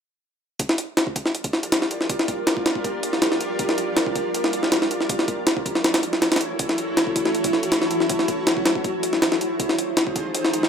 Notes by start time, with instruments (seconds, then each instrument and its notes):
0.59 ambient pad F4 G4 A#4 D5, kick, closed hi-hat
0.69 snare
0.78 closed hi-hat
0.97 snare, closed hi-hat
1.07 kick
1.16 kick, closed hi-hat
1.26 snare
1.35 closed hi-hat
1.44 kick, closed hi-hat
1.53 snare
1.63 closed hi-hat
1.72 snare, closed hi-hat
1.82 snare
1.91 closed hi-hat
2.01 snare
2.10 kick, closed hi-hat
2.19 snare
2.28 kick, closed hi-hat
2.47 snare, closed hi-hat
2.57 kick
2.66 snare, closed hi-hat
2.75 kick
2.84 kick, closed hi-hat
3.03 closed hi-hat
3.13 snare
3.22 snare, closed hi-hat
3.32 snare
3.41 closed hi-hat
3.59 kick, closed hi-hat
3.69 snare
3.78 closed hi-hat
3.97 snare, closed hi-hat
4.06 kick
4.16 kick, closed hi-hat
4.34 closed hi-hat
4.44 snare
4.53 closed hi-hat
4.63 snare
4.72 snare, closed hi-hat
4.82 snare
4.91 closed hi-hat
5.01 snare
5.09 ambient pad E4 F#4 A4 C#5, kick, closed hi-hat
5.19 snare
5.28 kick, closed hi-hat
5.47 snare, closed hi-hat
5.57 kick
5.66 kick, closed hi-hat
5.75 snare
5.84 snare, closed hi-hat
5.94 snare, closed hi-hat
6.03 closed hi-hat
6.13 snare
6.22 snare, closed hi-hat
6.32 snare, closed hi-hat
6.36 snare, closed hi-hat
6.41 closed hi-hat
6.59 kick, closed hi-hat
6.69 snare
6.78 closed hi-hat
6.97 snare, closed hi-hat
7.07 kick
7.16 kick, closed hi-hat
7.25 snare
7.35 closed hi-hat
7.44 kick, closed hi-hat
7.53 snare
7.63 closed hi-hat
7.72 snare, closed hi-hat
7.82 snare
7.91 closed hi-hat
8.00 snare
8.09 kick, closed hi-hat
8.19 snare
8.28 kick, closed hi-hat
8.47 snare, closed hi-hat
8.57 kick
8.66 snare, closed hi-hat
8.75 kick
8.84 ambient pad D#4 F4 G#4 C5, kick, closed hi-hat
9.03 closed hi-hat
9.13 snare
9.22 snare, closed hi-hat
9.32 snare
9.41 closed hi-hat
9.60 kick, closed hi-hat
9.69 snare
9.79 closed hi-hat
9.97 snare, closed hi-hat
10.07 kick
10.16 kick, closed hi-hat
10.34 ambient pad A#4, closed hi-hat
10.45 snare
10.53 closed hi-hat
10.63 snare